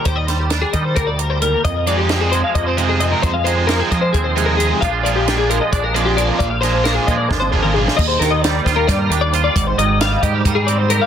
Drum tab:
CC |--------------|--------------|--------------|--------------|
HH |x-x-x-x-x-x-x-|x-x-x-x-x-x-x-|x-x-x-x-x-x-x-|x-x-x-x-x-x-x-|
SD |--o-o---------|----o---------|----o---------|----o---------|
T1 |--------------|--------------|--------------|--------------|
T2 |--------------|--------------|--------------|--------------|
FT |--------------|--------------|--------------|--------------|
BD |o-----o-o-----|o-------o-----|o-----o-o-----|o-------o-----|

CC |--------------|x-------------|--------------|
HH |x-x-x-x-------|--x-x-x-x-x-x-|x-x-x-x-x-x-x-|
SD |--o-o---o----o|--o-o-o-o-----|----o---------|
T1 |---------o----|--------------|--------------|
T2 |-----------o--|--------------|--------------|
FT |------------o-|--------------|--------------|
BD |o-----o-o-o---|o-----o-o-----|o-----o-o-----|